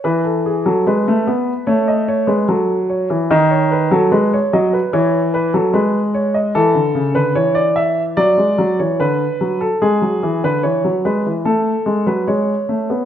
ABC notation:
X:1
M:4/4
L:1/16
Q:1/4=74
K:A
V:1 name="Grand piano"
B A G A B4 c ^d c B A2 c2 | ^d c B A B c d B c2 B A B2 c d | A3 B c d e2 d3 c B3 A | G3 B c2 B2 A3 B c4 |]
V:2 name="Grand piano" clef=bass
E,3 F, G, A, B,2 A,3 G, F,3 E, | ^D,3 F, G,2 F,2 E,3 F, G,4 | E, D, C, D, E,4 F, G, F, E, D,2 F,2 | G, F, E, D, E, F, G, E, A,2 G, F, G,2 A, B, |]